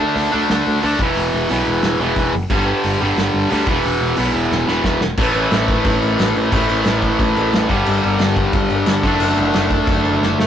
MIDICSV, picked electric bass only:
0, 0, Header, 1, 2, 480
1, 0, Start_track
1, 0, Tempo, 335196
1, 1668, Time_signature, 4, 2, 24, 8
1, 14992, End_track
2, 0, Start_track
2, 0, Title_t, "Picked electric bass"
2, 0, Program_c, 0, 34
2, 226, Note_on_c, 0, 38, 88
2, 376, Note_off_c, 0, 38, 0
2, 488, Note_on_c, 0, 38, 74
2, 631, Note_off_c, 0, 38, 0
2, 718, Note_on_c, 0, 38, 84
2, 864, Note_off_c, 0, 38, 0
2, 960, Note_on_c, 0, 38, 74
2, 1106, Note_off_c, 0, 38, 0
2, 1194, Note_on_c, 0, 38, 84
2, 1342, Note_off_c, 0, 38, 0
2, 1424, Note_on_c, 0, 28, 85
2, 1574, Note_off_c, 0, 28, 0
2, 1675, Note_on_c, 0, 28, 90
2, 1822, Note_off_c, 0, 28, 0
2, 1921, Note_on_c, 0, 28, 89
2, 2066, Note_off_c, 0, 28, 0
2, 2165, Note_on_c, 0, 35, 85
2, 2309, Note_off_c, 0, 35, 0
2, 2401, Note_on_c, 0, 28, 81
2, 2546, Note_off_c, 0, 28, 0
2, 2620, Note_on_c, 0, 28, 89
2, 2772, Note_off_c, 0, 28, 0
2, 2865, Note_on_c, 0, 28, 77
2, 3015, Note_off_c, 0, 28, 0
2, 3095, Note_on_c, 0, 28, 84
2, 3248, Note_off_c, 0, 28, 0
2, 3340, Note_on_c, 0, 30, 91
2, 3492, Note_off_c, 0, 30, 0
2, 3583, Note_on_c, 0, 31, 88
2, 3883, Note_off_c, 0, 31, 0
2, 4074, Note_on_c, 0, 31, 91
2, 4221, Note_off_c, 0, 31, 0
2, 4299, Note_on_c, 0, 31, 86
2, 4451, Note_off_c, 0, 31, 0
2, 4541, Note_on_c, 0, 31, 88
2, 4693, Note_off_c, 0, 31, 0
2, 4784, Note_on_c, 0, 31, 87
2, 4935, Note_off_c, 0, 31, 0
2, 5042, Note_on_c, 0, 38, 96
2, 5187, Note_off_c, 0, 38, 0
2, 5253, Note_on_c, 0, 28, 94
2, 5407, Note_off_c, 0, 28, 0
2, 5513, Note_on_c, 0, 28, 100
2, 5661, Note_off_c, 0, 28, 0
2, 5739, Note_on_c, 0, 28, 87
2, 5891, Note_off_c, 0, 28, 0
2, 5994, Note_on_c, 0, 35, 99
2, 6141, Note_off_c, 0, 35, 0
2, 6213, Note_on_c, 0, 28, 85
2, 6367, Note_off_c, 0, 28, 0
2, 6466, Note_on_c, 0, 28, 92
2, 6616, Note_off_c, 0, 28, 0
2, 6697, Note_on_c, 0, 28, 77
2, 6850, Note_off_c, 0, 28, 0
2, 6931, Note_on_c, 0, 28, 91
2, 7086, Note_off_c, 0, 28, 0
2, 7179, Note_on_c, 0, 28, 91
2, 7331, Note_off_c, 0, 28, 0
2, 7422, Note_on_c, 0, 33, 96
2, 7594, Note_off_c, 0, 33, 0
2, 7657, Note_on_c, 0, 33, 96
2, 7831, Note_off_c, 0, 33, 0
2, 7896, Note_on_c, 0, 33, 99
2, 8241, Note_off_c, 0, 33, 0
2, 8380, Note_on_c, 0, 33, 99
2, 8553, Note_off_c, 0, 33, 0
2, 8632, Note_on_c, 0, 33, 81
2, 8801, Note_off_c, 0, 33, 0
2, 8876, Note_on_c, 0, 33, 101
2, 9043, Note_off_c, 0, 33, 0
2, 9117, Note_on_c, 0, 33, 95
2, 9284, Note_off_c, 0, 33, 0
2, 9340, Note_on_c, 0, 33, 99
2, 9513, Note_off_c, 0, 33, 0
2, 9602, Note_on_c, 0, 33, 98
2, 9767, Note_off_c, 0, 33, 0
2, 9828, Note_on_c, 0, 33, 106
2, 10168, Note_off_c, 0, 33, 0
2, 10307, Note_on_c, 0, 33, 98
2, 10477, Note_off_c, 0, 33, 0
2, 10552, Note_on_c, 0, 33, 88
2, 10721, Note_off_c, 0, 33, 0
2, 10784, Note_on_c, 0, 33, 93
2, 10956, Note_off_c, 0, 33, 0
2, 11021, Note_on_c, 0, 31, 97
2, 11193, Note_off_c, 0, 31, 0
2, 11271, Note_on_c, 0, 31, 93
2, 11440, Note_off_c, 0, 31, 0
2, 11519, Note_on_c, 0, 31, 90
2, 11685, Note_off_c, 0, 31, 0
2, 11740, Note_on_c, 0, 31, 98
2, 12083, Note_off_c, 0, 31, 0
2, 12219, Note_on_c, 0, 31, 100
2, 12392, Note_off_c, 0, 31, 0
2, 12456, Note_on_c, 0, 31, 86
2, 12631, Note_off_c, 0, 31, 0
2, 12697, Note_on_c, 0, 31, 93
2, 12871, Note_off_c, 0, 31, 0
2, 12944, Note_on_c, 0, 30, 94
2, 13116, Note_off_c, 0, 30, 0
2, 13176, Note_on_c, 0, 30, 97
2, 13351, Note_off_c, 0, 30, 0
2, 13421, Note_on_c, 0, 30, 102
2, 13594, Note_off_c, 0, 30, 0
2, 13669, Note_on_c, 0, 30, 94
2, 14011, Note_off_c, 0, 30, 0
2, 14139, Note_on_c, 0, 30, 92
2, 14313, Note_off_c, 0, 30, 0
2, 14382, Note_on_c, 0, 30, 82
2, 14556, Note_off_c, 0, 30, 0
2, 14626, Note_on_c, 0, 30, 94
2, 14798, Note_off_c, 0, 30, 0
2, 14870, Note_on_c, 0, 31, 87
2, 14992, Note_off_c, 0, 31, 0
2, 14992, End_track
0, 0, End_of_file